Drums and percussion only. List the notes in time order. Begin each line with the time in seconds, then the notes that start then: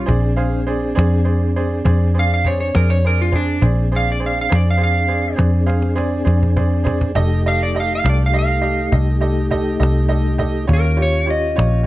0.08 cajon bass
0.38 cajon slap
0.67 cajon slap
0.99 cajon slap
1.26 cajon slap
1.56 cajon slap
1.86 cajon bass
2.15 cajon slap
2.44 cajon bass
2.75 cajon slap
3.03 cajon slap
3.33 cajon bass, cajon slap
3.62 cajon bass
3.92 cajon slap
4.22 cajon slap
4.52 cajon slap
4.80 cajon slap
5.09 cajon slap
5.39 cajon bass, cajon slap
5.69 cajon slap
5.82 cajon slap
5.98 cajon slap
6.27 cajon slap
6.43 cajon bass
6.57 cajon bass
6.87 cajon bass
7.01 cajon bass
7.15 cajon bass
7.46 cajon slap
7.75 cajon slap
8.06 cajon slap
8.34 cajon slap
8.63 cajon slap
8.92 cajon bass
9.22 cajon slap
9.51 cajon bass
9.83 cajon slap
10.11 cajon slap
10.39 cajon bass
10.69 cajon bass
10.99 cajon slap
11.28 cajon slap
11.59 cajon slap